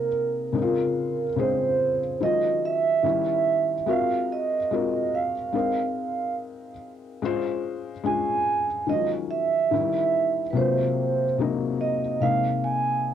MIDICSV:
0, 0, Header, 1, 3, 480
1, 0, Start_track
1, 0, Tempo, 833333
1, 1270, Time_signature, 4, 2, 24, 8
1, 7569, End_track
2, 0, Start_track
2, 0, Title_t, "Vibraphone"
2, 0, Program_c, 0, 11
2, 0, Note_on_c, 0, 70, 85
2, 778, Note_off_c, 0, 70, 0
2, 806, Note_on_c, 0, 72, 78
2, 1255, Note_off_c, 0, 72, 0
2, 1284, Note_on_c, 0, 75, 104
2, 1524, Note_off_c, 0, 75, 0
2, 1529, Note_on_c, 0, 76, 91
2, 2248, Note_on_c, 0, 77, 90
2, 2261, Note_off_c, 0, 76, 0
2, 2486, Note_off_c, 0, 77, 0
2, 2491, Note_on_c, 0, 75, 87
2, 2965, Note_on_c, 0, 77, 74
2, 2974, Note_off_c, 0, 75, 0
2, 3655, Note_off_c, 0, 77, 0
2, 4642, Note_on_c, 0, 80, 96
2, 5093, Note_off_c, 0, 80, 0
2, 5123, Note_on_c, 0, 75, 100
2, 5228, Note_off_c, 0, 75, 0
2, 5360, Note_on_c, 0, 76, 87
2, 6019, Note_off_c, 0, 76, 0
2, 6051, Note_on_c, 0, 71, 53
2, 6077, Note_off_c, 0, 71, 0
2, 6087, Note_on_c, 0, 72, 75
2, 6536, Note_off_c, 0, 72, 0
2, 6802, Note_on_c, 0, 75, 76
2, 7038, Note_on_c, 0, 77, 100
2, 7043, Note_off_c, 0, 75, 0
2, 7281, Note_off_c, 0, 77, 0
2, 7282, Note_on_c, 0, 80, 93
2, 7569, Note_off_c, 0, 80, 0
2, 7569, End_track
3, 0, Start_track
3, 0, Title_t, "Felt piano"
3, 0, Program_c, 1, 0
3, 0, Control_c, 1, 64, 127
3, 0, Note_on_c, 1, 48, 64
3, 0, Note_on_c, 1, 56, 61
3, 0, Note_on_c, 1, 58, 59
3, 0, Note_on_c, 1, 63, 73
3, 303, Note_on_c, 1, 49, 68
3, 308, Note_off_c, 1, 56, 0
3, 308, Note_on_c, 1, 56, 68
3, 315, Note_on_c, 1, 60, 69
3, 317, Note_off_c, 1, 63, 0
3, 317, Control_c, 1, 64, 0
3, 319, Note_on_c, 1, 63, 61
3, 320, Note_off_c, 1, 58, 0
3, 321, Note_off_c, 1, 48, 0
3, 357, Note_on_c, 1, 65, 89
3, 359, Note_off_c, 1, 63, 0
3, 420, Control_c, 1, 64, 127
3, 709, Note_off_c, 1, 49, 0
3, 712, Note_off_c, 1, 56, 0
3, 715, Note_off_c, 1, 60, 0
3, 736, Note_off_c, 1, 65, 0
3, 784, Note_on_c, 1, 49, 71
3, 790, Note_on_c, 1, 56, 59
3, 796, Note_on_c, 1, 60, 69
3, 802, Note_on_c, 1, 68, 77
3, 1138, Note_off_c, 1, 49, 0
3, 1142, Note_off_c, 1, 56, 0
3, 1144, Note_off_c, 1, 60, 0
3, 1147, Note_off_c, 1, 68, 0
3, 1269, Note_on_c, 1, 51, 64
3, 1272, Note_on_c, 1, 54, 59
3, 1277, Note_on_c, 1, 56, 59
3, 1278, Control_c, 1, 64, 0
3, 1280, Note_on_c, 1, 61, 62
3, 1284, Note_on_c, 1, 65, 78
3, 1375, Control_c, 1, 64, 127
3, 1736, Note_off_c, 1, 51, 0
3, 1744, Note_on_c, 1, 51, 79
3, 1747, Note_off_c, 1, 61, 0
3, 1751, Note_off_c, 1, 54, 0
3, 1751, Note_on_c, 1, 55, 73
3, 1753, Note_off_c, 1, 56, 0
3, 1756, Note_on_c, 1, 61, 75
3, 1757, Note_off_c, 1, 65, 0
3, 1758, Control_c, 1, 64, 0
3, 1763, Note_on_c, 1, 64, 88
3, 1855, Control_c, 1, 64, 127
3, 2150, Note_off_c, 1, 51, 0
3, 2153, Note_off_c, 1, 55, 0
3, 2156, Note_off_c, 1, 61, 0
3, 2159, Note_off_c, 1, 64, 0
3, 2224, Note_on_c, 1, 56, 76
3, 2228, Note_on_c, 1, 60, 66
3, 2233, Note_on_c, 1, 65, 69
3, 2236, Note_on_c, 1, 66, 73
3, 2238, Control_c, 1, 64, 0
3, 2240, Note_on_c, 1, 70, 76
3, 2346, Control_c, 1, 64, 127
3, 2630, Note_off_c, 1, 56, 0
3, 2632, Note_off_c, 1, 60, 0
3, 2634, Note_off_c, 1, 65, 0
3, 2636, Note_off_c, 1, 66, 0
3, 2638, Note_off_c, 1, 70, 0
3, 2713, Note_on_c, 1, 56, 75
3, 2718, Note_on_c, 1, 60, 58
3, 2721, Note_on_c, 1, 65, 68
3, 2726, Note_on_c, 1, 66, 68
3, 2731, Note_on_c, 1, 70, 78
3, 3063, Note_off_c, 1, 56, 0
3, 3065, Note_off_c, 1, 60, 0
3, 3067, Note_off_c, 1, 65, 0
3, 3070, Note_off_c, 1, 66, 0
3, 3072, Note_off_c, 1, 70, 0
3, 3183, Note_on_c, 1, 56, 66
3, 3187, Note_on_c, 1, 60, 64
3, 3191, Note_on_c, 1, 63, 60
3, 3197, Control_c, 1, 64, 0
3, 3198, Note_on_c, 1, 70, 72
3, 3281, Control_c, 1, 64, 127
3, 3863, Note_off_c, 1, 56, 0
3, 3866, Note_off_c, 1, 60, 0
3, 3868, Note_off_c, 1, 63, 0
3, 3871, Note_off_c, 1, 70, 0
3, 4159, Control_c, 1, 64, 0
3, 4159, Note_on_c, 1, 56, 91
3, 4164, Note_on_c, 1, 61, 75
3, 4171, Note_on_c, 1, 65, 71
3, 4177, Note_on_c, 1, 72, 104
3, 4255, Control_c, 1, 64, 127
3, 4557, Note_off_c, 1, 56, 0
3, 4560, Note_off_c, 1, 61, 0
3, 4563, Note_off_c, 1, 65, 0
3, 4566, Note_off_c, 1, 72, 0
3, 4629, Note_on_c, 1, 56, 77
3, 4635, Note_on_c, 1, 61, 67
3, 4641, Note_on_c, 1, 65, 63
3, 4647, Note_on_c, 1, 68, 68
3, 4981, Note_off_c, 1, 56, 0
3, 4984, Note_off_c, 1, 61, 0
3, 4987, Note_off_c, 1, 65, 0
3, 4990, Note_off_c, 1, 68, 0
3, 5107, Note_on_c, 1, 51, 66
3, 5112, Note_on_c, 1, 53, 51
3, 5115, Note_on_c, 1, 56, 59
3, 5118, Control_c, 1, 64, 0
3, 5120, Note_on_c, 1, 61, 58
3, 5124, Note_on_c, 1, 65, 70
3, 5148, Note_on_c, 1, 54, 58
3, 5156, Note_off_c, 1, 53, 0
3, 5204, Control_c, 1, 64, 127
3, 5584, Note_off_c, 1, 51, 0
3, 5592, Note_off_c, 1, 56, 0
3, 5593, Note_on_c, 1, 51, 76
3, 5595, Note_off_c, 1, 61, 0
3, 5597, Note_off_c, 1, 65, 0
3, 5598, Control_c, 1, 64, 0
3, 5598, Note_on_c, 1, 52, 53
3, 5604, Note_on_c, 1, 61, 65
3, 5609, Note_off_c, 1, 54, 0
3, 5609, Note_on_c, 1, 64, 92
3, 5636, Note_on_c, 1, 55, 64
3, 5639, Note_off_c, 1, 52, 0
3, 5703, Control_c, 1, 64, 127
3, 5994, Note_off_c, 1, 51, 0
3, 6000, Note_off_c, 1, 61, 0
3, 6002, Note_off_c, 1, 64, 0
3, 6016, Note_off_c, 1, 55, 0
3, 6064, Note_on_c, 1, 48, 78
3, 6068, Note_on_c, 1, 54, 70
3, 6073, Note_on_c, 1, 56, 61
3, 6077, Note_on_c, 1, 58, 67
3, 6079, Control_c, 1, 64, 0
3, 6083, Note_on_c, 1, 65, 75
3, 6193, Control_c, 1, 64, 127
3, 6470, Note_off_c, 1, 48, 0
3, 6472, Note_off_c, 1, 54, 0
3, 6474, Note_off_c, 1, 56, 0
3, 6476, Note_off_c, 1, 58, 0
3, 6479, Note_off_c, 1, 65, 0
3, 6556, Note_on_c, 1, 48, 62
3, 6561, Note_on_c, 1, 54, 67
3, 6565, Note_on_c, 1, 56, 60
3, 6569, Note_on_c, 1, 58, 64
3, 6573, Note_on_c, 1, 63, 81
3, 6905, Note_off_c, 1, 48, 0
3, 6907, Note_off_c, 1, 54, 0
3, 6909, Note_off_c, 1, 56, 0
3, 6911, Note_off_c, 1, 58, 0
3, 6913, Note_off_c, 1, 63, 0
3, 7030, Note_on_c, 1, 48, 65
3, 7034, Note_on_c, 1, 56, 56
3, 7038, Control_c, 1, 64, 0
3, 7041, Note_on_c, 1, 58, 62
3, 7045, Note_on_c, 1, 63, 77
3, 7151, Control_c, 1, 64, 127
3, 7569, Note_off_c, 1, 48, 0
3, 7569, Note_off_c, 1, 56, 0
3, 7569, Note_off_c, 1, 58, 0
3, 7569, Note_off_c, 1, 63, 0
3, 7569, End_track
0, 0, End_of_file